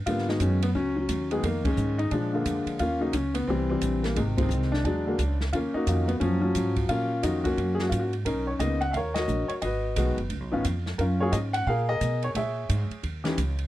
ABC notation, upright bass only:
X:1
M:4/4
L:1/8
Q:"Swing" 1/4=176
K:Ebm
V:1 name="Upright bass" clef=bass
A,,2 G,,2 D,,2 E,,2 | F,,2 A,,2 B,,2 F,, z | E,,2 D,,2 =C,,2 B,,,2 | A,,,2 =C,,2 =E,,2 D,,2 |
E,, z F,,2 G,,2 A,,2 | B,,2 F,,2 G,,2 A,,2 | =B,,,2 ^C,,2 ^D,,2 ^A,,, z | A,,,2 (3C,, A,,, G,,, (3D,, C,, A,,, F,,2 |
G,,2 A,,2 B,,2 C,2 | B,,2 A,, z E,,2 D,,2 |]